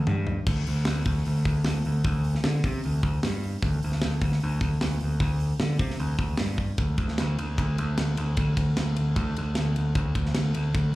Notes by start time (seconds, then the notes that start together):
0.07 G2, mid tom
0.27 floor tom
0.47 D2, kick, crash
0.67 D2, open hi-hat
0.85 D2, snare, open hi-hat
1.05 D2, kick, open hi-hat
1.25 D2, open hi-hat
1.45 D2, kick, open hi-hat
1.65 D2, snare, open hi-hat
1.85 D2, open hi-hat
2.04 D2, kick, open hi-hat
2.24 open hi-hat
2.35 snare
2.44 D3, snare, open hi-hat
2.64 C3, kick, open hi-hat
2.84 D2, open hi-hat
3.03 D2, kick, open hi-hat
3.23 G2, snare, open hi-hat
3.43 open hi-hat
3.63 D2, kick, open hi-hat
3.83 D2, open hi-hat
3.92 snare
4.02 D2, snare, open hi-hat
4.21 D2, kick, open hi-hat
4.32 snare
4.40 D2, open hi-hat
4.61 D2, kick, open hi-hat
4.81 D2, snare, open hi-hat
5.00 D2, open hi-hat
5.20 D2, kick, open hi-hat
5.40 open hi-hat
5.60 D3, snare, open hi-hat
5.79 C3, kick, open hi-hat
5.90 snare
5.99 D2, open hi-hat
6.18 D2, kick, open hi-hat
6.37 G2, snare, open hi-hat
6.58 kick
6.78 D2, kick, ride
6.98 D2, kick, ride
7.08 snare
7.18 D2, snare, ride
7.39 D2, ride
7.58 D2, kick, ride
7.78 D2, ride
7.98 D2, snare, ride
8.17 D2, ride
8.37 D2, kick, ride
8.57 D2, kick, ride
8.77 D2, snare, ride
8.96 D2, ride
9.16 D2, kick, ride
9.37 D2, ride
9.55 D2, snare, ride
9.76 D2, ride
9.95 D2, kick, ride
10.15 D2, kick, ride
10.25 snare
10.35 D2, snare, ride
10.54 D2, ride
10.74 D2, kick, ride